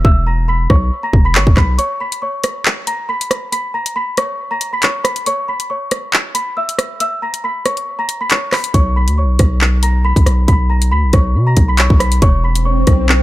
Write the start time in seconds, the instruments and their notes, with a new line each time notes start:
0.05 808-style bass E1, celesta E5 E6, kick
0.27 celesta A#5 A#6
0.48 celesta B5 B6
0.70 808-style bass B1, celesta C#5 C#6, kick, cross-stick
1.03 celesta A#5 A#6
1.13 808-style bass E1, kick
1.25 celesta B5 B6
1.35 808-style bass G1, celesta C#5 C#6, clap
1.47 808-style bass E1, kick
1.57 808-style bass B1, celesta B5 B6, kick, cross-stick, clap
1.78 celesta C#5 C#6, closed hi-hat
2.00 celesta B5 B6
2.12 closed hi-hat
2.22 celesta C#5 C#6
2.44 cross-stick, closed hi-hat
2.66 clap
2.87 celesta A#5 A#6, closed hi-hat
3.09 celesta B5 B6
3.21 closed hi-hat
3.31 cross-stick, closed hi-hat
3.52 celesta B5 B6, closed hi-hat
3.74 celesta A#5 A#6
3.86 closed hi-hat
3.96 celesta B5 B6
4.17 celesta C#5 C#6, cross-stick, closed hi-hat
4.51 celesta A#5 A#6
4.61 closed hi-hat
4.73 celesta B5 B6
4.82 celesta C#5 C#6, clap, closed hi-hat
5.04 celesta B5 B6, cross-stick, closed hi-hat
5.16 closed hi-hat
5.26 celesta C#5 C#6, closed hi-hat
5.48 celesta B5 B6
5.60 closed hi-hat
5.70 celesta C#5 C#6
5.91 cross-stick, closed hi-hat
6.13 clap
6.35 celesta B5 B6, closed hi-hat
6.57 celesta E5 E6
6.69 closed hi-hat
6.79 cross-stick, closed hi-hat
7.00 celesta E5 E6, closed hi-hat
7.22 celesta A#5 A#6
7.34 closed hi-hat
7.44 celesta B5 B6
7.66 celesta C#5 C#6, cross-stick, closed hi-hat
7.77 closed hi-hat
7.99 celesta A#5 A#6
8.09 closed hi-hat
8.21 celesta B5 B6
8.30 celesta C#5 C#6, clap, closed hi-hat
8.52 celesta B5 B6, cross-stick, clap, open hi-hat
8.64 closed hi-hat
8.74 808-style bass B1, celesta C#5 C#6, kick, closed hi-hat
8.96 celesta B5 B6
9.07 808-style bass D2, closed hi-hat
9.18 celesta C#5 C#6
9.23 808-style bass B1
9.39 808-style bass B1, kick, cross-stick, closed hi-hat
9.61 clap
9.83 celesta A#5 A#6, closed hi-hat
10.05 celesta B5 B6
10.16 808-style bass B1, kick, closed hi-hat
10.26 808-style bass B1, cross-stick, closed hi-hat
10.48 808-style bass B1, celesta B5 B6, kick, closed hi-hat
10.70 celesta A#5 A#6
10.82 closed hi-hat
10.92 808-style bass D2, celesta B5 B6
11.03 808-style bass B1
11.13 808-style bass B1, celesta C#5 C#6, kick, cross-stick, closed hi-hat
11.35 808-style bass B2
11.47 celesta A#5 A#6
11.57 808-style bass B1, kick, closed hi-hat
11.68 celesta B5 B6
11.78 celesta C#5 C#6, clap, closed hi-hat
11.90 808-style bass B1, kick
11.99 celesta B5 B6, cross-stick, closed hi-hat
12.12 closed hi-hat
12.22 808-style bass E1, celesta C#5 C#6, kick, closed hi-hat, swell
12.44 celesta B5 B6
12.55 closed hi-hat
12.65 celesta C#5 C#6
12.87 808-style bass B1, kick, cross-stick, closed hi-hat
13.09 clap